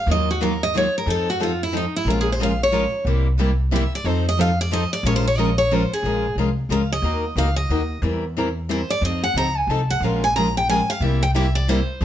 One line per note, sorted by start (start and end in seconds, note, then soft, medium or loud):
0.06 0.87 D#2 medium
0.06 0.28 D#3 medium
0.06 0.28 F#3 medium
0.06 0.28 A#3 medium
0.06 0.29 F4 medium
0.11 0.29 D#5 medium
0.31 0.42 F#4 medium
0.41 0.52 D#3 medium
0.41 0.52 F#3 medium
0.41 0.52 A#3 medium
0.41 0.52 F4 loud
0.41 0.61 A#4 medium
0.63 0.75 D#5 loud
0.75 0.85 D#3 medium
0.75 0.86 F#3 medium
0.75 0.86 A#3 medium
0.75 0.86 F4 loud
0.75 0.95 C#5 medium
0.98 1.09 A#4 medium
1.06 1.86 F2 medium
1.06 1.27 F3 medium
1.06 1.27 C4 medium
1.06 1.28 D#4 medium
1.06 1.28 A4 medium
1.10 1.28 A4 medium
1.30 1.41 F#4 medium
1.40 1.51 F3 medium
1.40 1.51 C4 medium
1.40 1.51 D#4 medium
1.40 1.61 F4 medium
1.40 1.51 A4 loud
1.63 1.75 E4 medium
1.73 1.84 F3 medium
1.73 1.84 C4 medium
1.73 1.84 D#4 loud
1.73 1.84 A4 medium
1.77 1.94 D#4 medium
1.96 2.08 E4 medium
2.05 2.85 A#1 medium
2.05 2.27 F3 medium
2.05 2.27 G#3 medium
2.05 2.27 C#4 medium
2.05 2.27 F4 medium
2.05 2.27 A#4 medium
2.10 2.19 F4 medium
2.21 2.30 G#4 medium
2.32 2.41 C5 medium
2.40 2.50 F3 medium
2.40 2.51 G#3 medium
2.40 2.51 C#4 medium
2.40 2.51 F4 medium
2.40 2.51 A#4 medium
2.40 2.61 F5 medium
2.63 3.05 C#5 medium
2.72 2.83 F3 medium
2.72 2.83 G#3 medium
2.72 2.83 C#4 medium
2.72 2.83 F4 medium
2.72 2.84 A#4 medium
3.05 3.85 C2 medium
3.05 3.26 C3 medium
3.05 3.26 G3 medium
3.05 3.26 A#3 medium
3.05 3.27 E4 medium
3.05 3.27 G4 medium
3.39 3.50 C3 medium
3.39 3.50 G3 medium
3.39 3.50 A#3 medium
3.39 3.50 E4 loud
3.39 3.50 G4 loud
3.71 3.82 C3 medium
3.71 3.83 G3 medium
3.71 3.83 A#3 medium
3.71 3.83 E4 loud
3.71 3.83 G4 loud
3.76 3.93 E5 medium
3.95 4.07 D5 loud
4.04 4.84 F2 loud
4.04 4.25 F3 medium
4.04 4.25 C4 medium
4.04 4.25 D#4 medium
4.04 4.26 A4 medium
4.04 4.26 C5 medium
4.29 4.40 D#5 loud
4.39 4.49 F3 loud
4.39 4.49 C4 medium
4.39 4.50 D#4 medium
4.39 4.50 A4 loud
4.39 4.59 F5 loud
4.61 4.72 D5 loud
4.72 4.82 F3 medium
4.72 4.82 C4 loud
4.72 4.83 D#4 loud
4.72 4.83 A4 medium
4.72 4.92 D#5 loud
4.93 5.05 D5 loud
5.03 5.83 A#1 medium
5.03 5.25 F3 medium
5.03 5.25 G#3 medium
5.03 5.25 C#4 medium
5.03 5.25 F4 medium
5.03 5.26 A#4 medium
5.03 5.15 C#5 loud
5.16 5.26 C5 medium
5.28 5.38 C#5 medium
5.38 5.48 F3 loud
5.38 5.49 G#3 medium
5.38 5.49 C#4 loud
5.38 5.49 F4 loud
5.38 5.49 A#4 loud
5.38 5.57 D#5 loud
5.58 5.74 C#5 loud
5.71 5.82 F3 medium
5.71 5.82 G#3 medium
5.71 5.82 C#4 loud
5.71 5.82 F4 loud
5.71 5.82 A#4 loud
5.71 5.91 C5 medium
5.93 6.35 G#4 loud
6.03 6.30 A#1 medium
6.03 6.25 F3 medium
6.03 6.25 G#3 medium
6.03 6.25 C#4 medium
6.03 6.25 F4 medium
6.03 6.25 A#4 medium
6.35 6.64 C2 medium
6.35 6.48 F3 medium
6.35 6.49 G#3 medium
6.35 6.48 C#4 medium
6.35 6.49 F4 medium
6.35 6.49 A#4 medium
6.69 6.98 C#2 medium
6.69 6.81 F3 medium
6.69 6.81 G#3 medium
6.69 6.81 C#4 medium
6.69 6.81 F4 medium
6.69 6.81 A#4 medium
6.69 6.90 F5 medium
6.92 7.35 D#5 loud
7.02 7.29 D#2 medium
7.02 7.23 D#3 medium
7.02 7.24 A#3 medium
7.02 7.24 D#4 medium
7.02 7.24 F#4 medium
7.02 7.24 A#4 medium
7.36 7.64 C#2 medium
7.36 7.47 D#3 medium
7.36 7.48 A#3 medium
7.36 7.48 D#4 loud
7.36 7.48 F#4 medium
7.36 7.48 A#4 loud
7.36 7.56 F5 medium
7.56 8.00 D#5 loud
7.69 7.98 D#2 medium
7.69 7.81 D#3 medium
7.69 7.81 A#3 medium
7.69 7.81 D#4 loud
7.69 7.81 F#4 loud
7.69 7.81 A#4 loud
8.02 8.82 E2 loud
8.02 8.23 E3 medium
8.02 8.23 G3 medium
8.02 8.23 C4 medium
8.02 8.23 E4 medium
8.02 8.24 A#4 medium
8.37 8.47 E3 medium
8.37 8.47 G3 loud
8.37 8.48 C4 medium
8.37 8.48 E4 loud
8.37 8.48 A#4 loud
8.69 8.80 E3 medium
8.69 8.80 G3 medium
8.69 8.80 C4 loud
8.69 8.80 E4 loud
8.69 8.80 A#4 loud
8.69 8.89 C5 medium
8.90 9.03 D5 loud
9.01 9.28 F2 loud
9.01 9.22 F3 medium
9.01 9.23 C4 medium
9.01 9.23 D#4 medium
9.01 9.23 A4 medium
9.01 9.23 D#5 medium
9.24 9.36 F#5 loud
9.34 9.63 C#2 medium
9.34 9.46 F3 medium
9.34 9.47 C4 medium
9.34 9.47 D#4 medium
9.34 9.47 A4 medium
9.34 9.57 A#5 loud
9.57 9.70 G#5 medium
9.67 9.96 C2 medium
9.67 9.80 F3 medium
9.67 9.80 C4 medium
9.67 9.80 D#4 medium
9.67 9.80 A4 loud
9.67 9.89 A5 medium
9.90 10.04 F#5 loud
10.00 10.80 A#1 medium
10.00 10.23 F3 medium
10.00 10.23 G#3 medium
10.00 10.22 F5 medium
10.04 10.23 C#4 medium
10.04 10.23 F4 medium
10.04 10.23 A#4 medium
10.24 10.35 G#5 loud
10.36 10.46 F3 medium
10.36 10.46 G#3 medium
10.36 10.47 C#4 loud
10.36 10.47 F4 loud
10.36 10.47 A#4 loud
10.36 10.55 A#5 loud
10.57 10.69 G5 loud
10.69 10.79 F3 medium
10.69 10.79 G#3 loud
10.69 10.80 C#4 loud
10.69 10.80 F4 medium
10.69 10.80 A#4 loud
10.69 10.88 G#5 loud
10.90 11.03 F5 loud
11.00 11.80 C2 medium
11.00 11.21 C3 medium
11.00 11.22 G3 medium
11.00 11.22 A#3 medium
11.00 11.22 E4 medium
11.00 11.22 G4 medium
11.00 11.21 E5 medium
11.23 11.30 G5 loud
11.35 11.45 C3 medium
11.35 11.45 G3 medium
11.35 11.45 A#3 loud
11.35 11.45 E4 loud
11.35 11.46 G4 loud
11.35 11.54 E5 medium
11.55 11.67 D5 loud
11.68 11.79 C3 loud
11.68 11.79 G3 medium
11.68 11.79 A#3 loud
11.68 11.79 E4 loud
11.68 11.79 G4 loud
11.68 12.05 C5 medium
12.01 12.05 F2 loud
12.01 12.05 F3 medium
12.01 12.05 C4 medium
12.01 12.05 D#4 medium